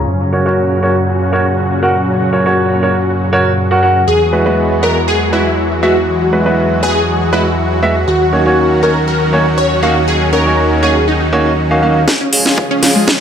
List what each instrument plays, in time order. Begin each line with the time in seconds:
Already playing: supersaw synth C#3 C#4
0.08 analog synth bass F#2, supersaw synth A#2 F#3 F#4
0.33 grand piano F#4 A#4 C#5
0.46 grand piano F#4 A#4 C#5
0.83 grand piano F#4 A#4 C#5
1.33 grand piano F#4 A#4 C#5
1.83 grand piano F#4 A#4 F#5
2.33 grand piano F#4 A#4 C#5
2.46 grand piano F#4 A#4 C#5
2.83 grand piano F#4 A#4 C#5
3.33 grand piano F#4 A#4 C#5
3.71 grand piano F#4 A#4 F#5
3.83 grand piano F#4 A#4 F#5
4.08 analog synth bass E2, supersaw synth E3 G#3 B3 F#4, digital synth lead G#4
4.33 grand piano G#3 B3 E4 F#4 B4
4.46 grand piano G#3 B3 E4 F#4 B4
4.83 grand piano G#3 B3 E4 F#4 B4, digital synth lead A#4
5.08 digital synth lead G#4
5.33 grand piano G#3 B3 E4 F#4 B4, digital synth lead E4
5.83 grand piano G#3 B3 E4 F#4 E5, digital synth lead F#4
6.33 grand piano G#3 B3 E4 F#4 B4
6.46 grand piano G#3 B3 E4 F#4 B4
6.83 grand piano G#3 B3 E4 F#4 B4, digital synth lead G#4
7.33 grand piano G#3 B3 E4 F#4 B4, digital synth lead E4
7.83 grand piano G#3 B3 E4 F#4 E5
8.08 analog synth bass D#2, supersaw synth D#3 C#4, digital synth lead F#4
8.33 grand piano A#3 C#4 D#4 F#4 C#5
8.46 grand piano A#3 C#4 D#4 F#4 C#5
8.83 grand piano A#3 C#4 D#4 F#4 C#5, digital synth lead A#4
9.08 digital synth lead A#4
9.33 grand piano A#3 C#4 D#4 F#4 C#5
9.58 digital synth lead C#5
9.83 grand piano A#3 C#4 D#4 F#4 F5, digital synth lead F#4
10.08 digital synth lead G#4
10.33 grand piano A#3 C#4 D#4 F#4 C#5, digital synth lead A#4
10.46 grand piano A#3 C#4 D#4 F#4 C#5
10.83 grand piano A#3 C#4 D#4 F#4 C#5, digital synth lead G#4
11.08 digital synth lead D#4
11.33 grand piano A#3 C#4 D#4 F#4 C#5
11.71 grand piano A#3 C#4 D#4 F#4 F5
11.83 grand piano A#3 C#4 D#4 F#4 F5
12.08 supersaw synth C#3 F3 G#3 F4 G#4, kick, snare, riser
12.21 synth pluck C#4
12.33 grand piano G#4 C#5 F5, open hi-hat
12.46 synth pluck C#4, grand piano G#4 C#5 F5, snare
12.58 kick
12.71 synth pluck C#4
12.83 grand piano G#4 C#5 F5, snare, open hi-hat
12.96 synth pluck G#3
13.08 kick, snare